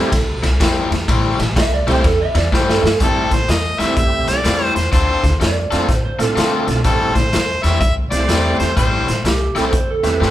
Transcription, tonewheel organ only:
0, 0, Header, 1, 2, 480
1, 0, Start_track
1, 0, Key_signature, 0, "minor"
1, 0, Tempo, 480384
1, 1082, Time_signature, 4, 2, 24, 8
1, 10297, End_track
2, 0, Start_track
2, 0, Title_t, "Tonewheel organ"
2, 0, Program_c, 0, 16
2, 0, Note_on_c, 0, 55, 86
2, 0, Note_on_c, 0, 57, 77
2, 0, Note_on_c, 0, 60, 78
2, 0, Note_on_c, 0, 64, 82
2, 0, Note_on_c, 0, 67, 91
2, 102, Note_off_c, 0, 55, 0
2, 104, Note_off_c, 0, 57, 0
2, 104, Note_off_c, 0, 60, 0
2, 106, Note_off_c, 0, 64, 0
2, 107, Note_off_c, 0, 67, 0
2, 1866, Note_on_c, 0, 55, 90
2, 1868, Note_on_c, 0, 57, 85
2, 1869, Note_on_c, 0, 64, 85
2, 1871, Note_on_c, 0, 60, 81
2, 1872, Note_on_c, 0, 67, 101
2, 2022, Note_off_c, 0, 55, 0
2, 2023, Note_off_c, 0, 57, 0
2, 2024, Note_off_c, 0, 64, 0
2, 2025, Note_off_c, 0, 60, 0
2, 2025, Note_off_c, 0, 67, 0
2, 3003, Note_on_c, 0, 55, 62
2, 3003, Note_on_c, 0, 57, 59
2, 3005, Note_on_c, 0, 60, 64
2, 3009, Note_on_c, 0, 64, 62
2, 3013, Note_on_c, 0, 67, 74
2, 3279, Note_off_c, 0, 55, 0
2, 3279, Note_off_c, 0, 57, 0
2, 3280, Note_off_c, 0, 60, 0
2, 3282, Note_off_c, 0, 64, 0
2, 3284, Note_off_c, 0, 67, 0
2, 3791, Note_on_c, 0, 55, 60
2, 3793, Note_on_c, 0, 57, 50
2, 3797, Note_on_c, 0, 60, 51
2, 3799, Note_on_c, 0, 67, 62
2, 3800, Note_on_c, 0, 64, 53
2, 4407, Note_off_c, 0, 55, 0
2, 4408, Note_off_c, 0, 57, 0
2, 4410, Note_off_c, 0, 60, 0
2, 4411, Note_off_c, 0, 64, 0
2, 4411, Note_off_c, 0, 67, 0
2, 5703, Note_on_c, 0, 57, 70
2, 5708, Note_on_c, 0, 62, 65
2, 5709, Note_on_c, 0, 60, 61
2, 5713, Note_on_c, 0, 65, 64
2, 5713, Note_on_c, 0, 69, 77
2, 5860, Note_off_c, 0, 57, 0
2, 5863, Note_off_c, 0, 60, 0
2, 5863, Note_off_c, 0, 62, 0
2, 5865, Note_off_c, 0, 69, 0
2, 5866, Note_off_c, 0, 65, 0
2, 6179, Note_on_c, 0, 57, 71
2, 6183, Note_on_c, 0, 60, 62
2, 6185, Note_on_c, 0, 62, 65
2, 6191, Note_on_c, 0, 65, 62
2, 6192, Note_on_c, 0, 69, 77
2, 6801, Note_off_c, 0, 57, 0
2, 6803, Note_off_c, 0, 60, 0
2, 6804, Note_off_c, 0, 62, 0
2, 6807, Note_off_c, 0, 65, 0
2, 6808, Note_off_c, 0, 69, 0
2, 6837, Note_on_c, 0, 57, 60
2, 6841, Note_on_c, 0, 64, 54
2, 6843, Note_on_c, 0, 60, 51
2, 6847, Note_on_c, 0, 67, 53
2, 6849, Note_on_c, 0, 69, 64
2, 7116, Note_off_c, 0, 57, 0
2, 7118, Note_off_c, 0, 64, 0
2, 7119, Note_off_c, 0, 60, 0
2, 7121, Note_off_c, 0, 67, 0
2, 7122, Note_off_c, 0, 69, 0
2, 8108, Note_on_c, 0, 57, 67
2, 8109, Note_on_c, 0, 60, 64
2, 8112, Note_on_c, 0, 64, 62
2, 8114, Note_on_c, 0, 67, 62
2, 8118, Note_on_c, 0, 72, 74
2, 8726, Note_off_c, 0, 57, 0
2, 8726, Note_off_c, 0, 60, 0
2, 8728, Note_off_c, 0, 64, 0
2, 8729, Note_off_c, 0, 67, 0
2, 8731, Note_off_c, 0, 72, 0
2, 9545, Note_on_c, 0, 60, 60
2, 9546, Note_on_c, 0, 57, 64
2, 9553, Note_on_c, 0, 64, 60
2, 9553, Note_on_c, 0, 67, 60
2, 9557, Note_on_c, 0, 69, 77
2, 9701, Note_off_c, 0, 60, 0
2, 9702, Note_off_c, 0, 57, 0
2, 9705, Note_off_c, 0, 64, 0
2, 9706, Note_off_c, 0, 67, 0
2, 9708, Note_off_c, 0, 69, 0
2, 10018, Note_on_c, 0, 57, 72
2, 10022, Note_on_c, 0, 60, 65
2, 10022, Note_on_c, 0, 64, 66
2, 10025, Note_on_c, 0, 67, 67
2, 10029, Note_on_c, 0, 71, 74
2, 10297, Note_off_c, 0, 57, 0
2, 10297, Note_off_c, 0, 60, 0
2, 10297, Note_off_c, 0, 64, 0
2, 10297, Note_off_c, 0, 67, 0
2, 10297, Note_off_c, 0, 71, 0
2, 10297, End_track
0, 0, End_of_file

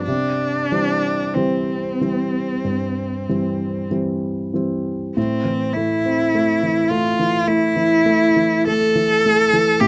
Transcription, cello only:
0, 0, Header, 1, 2, 480
1, 0, Start_track
1, 0, Key_signature, 0, "major"
1, 0, Tempo, 1295896
1, 23, Time_signature, 4, 2, 24, 8
1, 983, Tempo, 1255230
1, 1943, Key_signature, 0, "minor"
1, 1943, Tempo, 1174168
1, 3383, Tempo, 1117318
1, 3894, End_track
2, 0, Start_track
2, 0, Title_t, "Cello"
2, 0, Program_c, 0, 42
2, 17, Note_on_c, 0, 62, 65
2, 499, Note_on_c, 0, 60, 47
2, 504, Note_off_c, 0, 62, 0
2, 1461, Note_off_c, 0, 60, 0
2, 1945, Note_on_c, 0, 60, 59
2, 2175, Note_on_c, 0, 64, 67
2, 2181, Note_off_c, 0, 60, 0
2, 2651, Note_on_c, 0, 65, 69
2, 2657, Note_off_c, 0, 64, 0
2, 2888, Note_on_c, 0, 64, 73
2, 2894, Note_off_c, 0, 65, 0
2, 3375, Note_off_c, 0, 64, 0
2, 3377, Note_on_c, 0, 69, 84
2, 3860, Note_on_c, 0, 67, 85
2, 3867, Note_off_c, 0, 69, 0
2, 3894, Note_off_c, 0, 67, 0
2, 3894, End_track
0, 0, End_of_file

